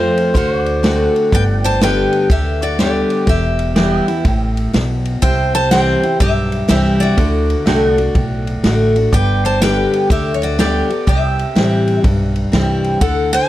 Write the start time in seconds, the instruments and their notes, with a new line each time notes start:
Already playing: steel-string acoustic guitar F2 F3 A3 C4 F4 C5, pedal steel guitar C5 F5
0.17 ride
0.34 upright bass D2, steel-string acoustic guitar D3 F#4 C5, pedal steel guitar C5 F5, kick, ride
0.56 pedal steel guitar D5 F#5
0.66 ride
0.83 steel-string acoustic guitar D3 A3 C4 F#4, snare, ride
1.16 ride
1.32 upright bass G1, steel-string acoustic guitar G2 B4 G5, pedal steel guitar D5 F#5, kick, ride
1.53 pedal steel guitar G5
1.64 steel-string acoustic guitar C5 A5, ride
1.81 steel-string acoustic guitar D3 G3 B3 G4 B4 G5, snare, ride
2.12 ride
2.30 upright bass D2, steel-string acoustic guitar D3 G4 E5, kick, ride
2.62 steel-string acoustic guitar F#4 D5, ride
2.79 steel-string acoustic guitar D3 G3 B3 G4 D5, snare, ride
3.10 ride
3.27 upright bass E1, steel-string acoustic guitar E2 G4 E5, kick, ride
3.59 ride
3.76 steel-string acoustic guitar E3 G3 B3 E4, pedal steel guitar D5 G5, snare, ride
4.01 pedal steel guitar E5
4.08 steel-string acoustic guitar B3 E4, ride
4.25 upright bass A1, steel-string acoustic guitar A2, kick, ride
4.57 ride
4.73 upright bass B1, steel-string acoustic guitar B2, snare, ride
5.05 ride
5.22 upright bass C2, steel-string acoustic guitar C3 C5 G5, pedal steel guitar E5 G5, kick, ride
5.54 steel-string acoustic guitar C5 A5, ride
5.71 steel-string acoustic guitar E3 G3 C4 E4 C5 G5, snare, ride
6.03 steel-string acoustic guitar C4 E4, ride
6.20 upright bass B1, steel-string acoustic guitar G2 G4 E5, kick, ride
6.52 ride
6.68 upright bass C2, steel-string acoustic guitar E3 G3 C4 E4 G4 E5, snare, ride
7.00 steel-string acoustic guitar F#4 D5, ride
7.17 upright bass D2, steel-string acoustic guitar D3, kick, ride
7.50 ride
7.66 upright bass C2, steel-string acoustic guitar D3 A3 D4 F#4, pedal steel guitar E5 G5, snare, ride
7.87 pedal steel guitar D5 F#5
7.98 steel-string acoustic guitar D4 F#4, ride
8.15 upright bass B1, steel-string acoustic guitar A2, kick, ride
8.47 ride
8.63 upright bass A1, steel-string acoustic guitar D3 A3 D4 F#4, snare, ride
8.96 steel-string acoustic guitar D4 F#4, ride
9.12 upright bass G1, steel-string acoustic guitar G2 B4 G5, pedal steel guitar D5 G5, kick, ride
9.45 steel-string acoustic guitar C5 A5, ride
9.61 steel-string acoustic guitar D3 G3 B3 G4 B4 G5, snare, ride
9.93 ride
10.10 upright bass D2, steel-string acoustic guitar D3 G4 E5, kick, ride
10.34 steel-string acoustic guitar C#5
10.42 steel-string acoustic guitar F#4 D5, ride
10.58 steel-string acoustic guitar D3 G3 B3 G4 D5, snare, ride
10.90 steel-string acoustic guitar B3 G4, ride
11.07 upright bass C2, steel-string acoustic guitar C3 G4 E5, pedal steel guitar D5 G5, kick, ride
11.32 pedal steel guitar E5
11.39 ride
11.55 upright bass A1, steel-string acoustic guitar E3 G3 C4 E4, snare, ride
11.87 ride
12.03 upright bass B1, steel-string acoustic guitar G2 D5, kick, ride
12.36 ride
12.52 upright bass C2, steel-string acoustic guitar E3 G3 C4 E4, snare, ride
12.84 ride
13.01 upright bass D2, steel-string acoustic guitar D3 A4 F#5, kick, ride
13.33 steel-string acoustic guitar C5 A5, ride